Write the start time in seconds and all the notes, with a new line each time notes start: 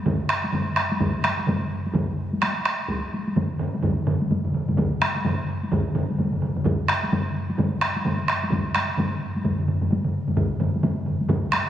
0.05 taiko, taiko low-mid, taiko mid, taiko high
0.29 taiko rim
0.44 taiko high
0.52 taiko low-mid, taiko mid, taiko high
0.76 taiko rim
0.92 taiko high
1.00 taiko, taiko low-mid, taiko mid, taiko high
1.24 taiko rim, taiko high
1.39 taiko high
1.47 taiko low-mid, taiko mid, taiko high
1.86 taiko high
1.94 taiko, taiko low-mid, taiko mid, taiko high
2.33 taiko high
2.42 taiko rim, taiko high
2.65 taiko rim
2.88 taiko, taiko high
3.14 taiko high
3.27 taiko high
3.36 taiko low-mid, taiko mid, taiko high
3.59 taiko low-mid, taiko mid
3.74 taiko high
3.83 taiko, taiko low-mid, taiko mid, taiko high
4.07 taiko low-mid, taiko mid
4.22 taiko high
4.31 taiko low-mid, taiko mid, taiko high
4.45 taiko low-mid, taiko mid
4.54 taiko low-mid, taiko mid
4.68 taiko low-mid, taiko mid, taiko high
4.77 taiko, taiko low-mid, taiko mid, taiko high
5.02 taiko rim, taiko high
5.16 taiko high
5.25 taiko low-mid, taiko mid, taiko high
5.64 taiko high
5.72 taiko, taiko low-mid, taiko mid, taiko high
5.95 taiko low-mid, taiko mid
6.10 taiko high
6.18 taiko low-mid, taiko mid, taiko high
6.32 taiko low-mid, taiko mid
6.42 taiko low-mid, taiko mid
6.56 taiko low-mid, taiko mid
6.64 taiko, taiko low-mid, taiko mid, taiko high
6.88 taiko rim
7.03 taiko high
7.12 taiko low-mid, taiko mid, taiko high
7.50 taiko high
7.57 taiko, taiko low-mid, taiko mid, taiko high
7.81 taiko rim
7.96 taiko high
8.05 taiko low-mid, taiko mid, taiko high
8.28 taiko rim
8.44 taiko high
8.51 taiko, taiko low-mid, taiko mid, taiko high
8.75 taiko rim, taiko high
8.97 taiko low-mid, taiko mid, taiko high
9.36 taiko high
9.44 taiko, taiko low-mid, taiko mid, taiko high
9.59 taiko low-mid, taiko mid
9.68 taiko low-mid, taiko mid
9.81 taiko low-mid, taiko mid, taiko high
9.91 taiko low-mid, taiko mid, taiko high
10.04 taiko low-mid, taiko mid
10.28 taiko low-mid, taiko mid, taiko high
10.37 taiko, taiko low-mid, taiko mid, taiko high
10.60 taiko low-mid, taiko mid, taiko high
10.76 taiko high
10.83 taiko low-mid, taiko mid, taiko high
11.06 taiko low-mid, taiko mid
11.21 taiko high
11.29 taiko, taiko low-mid, taiko mid, taiko high
11.44 taiko high
11.52 taiko rim, taiko high